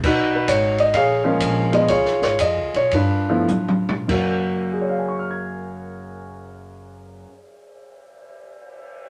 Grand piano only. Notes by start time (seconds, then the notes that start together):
0.04 D#4 F#4 B4
0.35 B4
0.49 C#5
0.80 D#5
0.95 G#4 C#5 F5
1.24 F3 G#3 A#3 C#4
1.72 F3 G#3 B3 F4 D#5
1.89 F4 G#4 C#5
2.23 C#5
2.41 D#5
2.76 C#5
2.94 D4 F4 B4
3.30 F3 A3 B3 E4
4.08 F#2 F#3 A#3 F#4
4.73 G#4
4.81 C#5
4.89 F5
4.98 G#5
5.08 C#6
5.19 F6
5.31 G#6